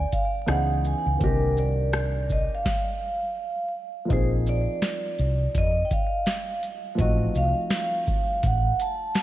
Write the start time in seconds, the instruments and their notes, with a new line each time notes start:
Already playing: grand piano G3 B3 D4 F4 G#4, vibraphone D5
0.12 vibraphone F5, kick, closed hi-hat, shaker
0.46 fretless electric bass C#2, grand piano E3 B3 C#4 D#4 G#4, vibraphone F#5, cross-stick, closed hi-hat
0.85 vibraphone G#5, shaker
1.06 fretless electric bass C#2
1.17 fretless electric bass C2, grand piano D3 A#3 C4, kick, closed hi-hat
1.22 grand piano D#3 D4 G4, vibraphone A#4
1.57 vibraphone D5, shaker
1.93 cross-stick, closed hi-hat
2.30 vibraphone D#5, kick, shaker
2.55 vibraphone F5
2.65 kick, snare
4.05 grand piano F3 A#3 C4
4.10 fretless electric bass A#1, grand piano D#4 G#4, vibraphone C5, kick, closed hi-hat
4.47 vibraphone D5, shaker
4.82 snare, closed hi-hat
5.19 fretless electric bass C2, shaker
5.55 fretless electric bass F2, vibraphone D#5, kick, closed hi-hat
5.85 vibraphone G5
5.91 vibraphone F5, kick, closed hi-hat, shaker
6.26 snare, closed hi-hat
6.63 closed hi-hat, shaker
6.95 fretless electric bass A1, grand piano F3 A3 C4, kick, closed hi-hat
7.00 grand piano D#4 F#4, vibraphone D#5
7.35 fretless electric bass C2, vibraphone F5, shaker
7.70 snare, closed hi-hat
8.07 kick, shaker
8.43 fretless electric bass A1, vibraphone F#5, kick, closed hi-hat
8.80 vibraphone A5, closed hi-hat, shaker
9.15 snare, closed hi-hat